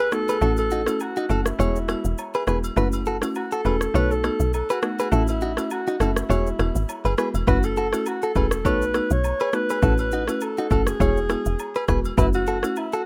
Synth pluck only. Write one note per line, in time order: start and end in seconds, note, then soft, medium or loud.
0.12 0.31 A3 medium
0.12 0.31 B3 medium
0.12 0.31 D#4 medium
0.12 0.31 F#4 medium
0.41 0.83 A3 loud
0.41 0.83 C#4 medium
0.41 0.83 E4 medium
0.41 0.83 F#4 loud
0.87 1.03 A3 medium
0.87 1.03 C#4 medium
0.87 1.04 E4 medium
0.87 1.04 F#4 medium
1.29 1.48 A3 medium
1.29 1.48 C#4 medium
1.29 1.48 E4 medium
1.29 1.49 F#4 medium
1.59 1.86 G#3 medium
1.59 1.86 B3 medium
1.59 1.86 E4 medium
1.59 1.86 F#4 loud
1.88 2.07 G#3 medium
1.88 2.07 B3 medium
1.88 2.07 E4 medium
1.88 2.07 F#4 medium
2.47 2.66 G#3 medium
2.47 2.66 B3 medium
2.47 2.66 E4 medium
2.47 2.66 F#4 medium
2.76 3.18 A3 medium
2.76 3.18 C#4 medium
2.76 3.19 E4 medium
2.76 3.19 F#4 loud
3.22 3.39 A3 medium
3.22 3.39 C#4 medium
3.22 3.39 E4 medium
3.22 3.39 F#4 medium
3.65 3.84 A3 medium
3.65 3.84 C#4 medium
3.65 3.84 E4 medium
3.65 3.84 F#4 medium
3.94 4.22 A3 medium
3.94 4.22 B3 medium
3.94 4.22 D#4 medium
3.94 4.22 F#4 loud
4.23 4.42 A3 medium
4.23 4.43 B3 medium
4.23 4.43 D#4 medium
4.23 4.43 F#4 medium
4.82 5.01 A3 medium
4.82 5.01 B3 medium
4.82 5.02 D#4 medium
4.82 5.02 F#4 medium
5.12 5.54 A3 loud
5.12 5.54 C#4 medium
5.12 5.54 E4 medium
5.12 5.54 F#4 loud
5.57 5.74 A3 medium
5.57 5.74 C#4 medium
5.57 5.74 E4 medium
5.57 5.74 F#4 medium
6.00 6.19 A3 medium
6.00 6.19 C#4 medium
6.00 6.19 E4 medium
6.00 6.19 F#4 medium
6.29 6.57 G#3 medium
6.29 6.57 B3 medium
6.29 6.57 E4 medium
6.29 6.57 F#4 loud
6.59 6.78 G#3 medium
6.59 6.78 B3 medium
6.59 6.78 E4 medium
6.59 6.78 F#4 medium
7.18 7.37 G#3 medium
7.18 7.37 B3 medium
7.18 7.37 E4 medium
7.18 7.37 F#4 medium
7.47 7.89 A3 medium
7.47 7.89 C#4 medium
7.47 7.89 E4 medium
7.47 7.89 F#4 loud
7.93 8.09 A3 medium
7.93 8.09 C#4 medium
7.93 8.10 E4 medium
7.93 8.10 F#4 medium
8.35 8.54 A3 medium
8.35 8.54 C#4 medium
8.35 8.54 E4 medium
8.35 8.55 F#4 medium
8.65 8.92 A3 medium
8.65 8.92 B3 medium
8.65 8.92 D#4 medium
8.65 8.92 F#4 loud
8.94 9.13 A3 medium
8.94 9.13 B3 medium
8.94 9.13 D#4 medium
8.94 9.13 F#4 medium
9.53 9.72 A3 medium
9.53 9.72 B3 medium
9.53 9.72 D#4 medium
9.53 9.72 F#4 medium
9.82 10.24 A3 medium
9.82 10.24 C#4 medium
9.82 10.24 E4 medium
9.82 10.24 F#4 loud
10.28 10.44 A3 medium
10.28 10.45 C#4 medium
10.28 10.45 E4 medium
10.28 10.45 F#4 medium
10.71 10.90 A3 medium
10.71 10.90 C#4 medium
10.71 10.90 E4 medium
10.71 10.90 F#4 medium
11.00 11.27 G#3 medium
11.00 11.27 B3 medium
11.00 11.28 E4 medium
11.00 11.28 F#4 loud
11.29 11.48 G#3 medium
11.29 11.48 B3 medium
11.29 11.49 E4 medium
11.29 11.49 F#4 medium
11.88 12.07 G#3 medium
11.88 12.07 B3 medium
11.88 12.07 E4 medium
11.88 12.07 F#4 medium
12.17 12.59 A3 medium
12.17 12.59 C#4 medium
12.17 12.60 E4 medium
12.17 12.60 F#4 loud
12.63 12.80 A3 medium
12.63 12.80 C#4 medium
12.63 12.80 E4 medium
12.63 12.80 F#4 medium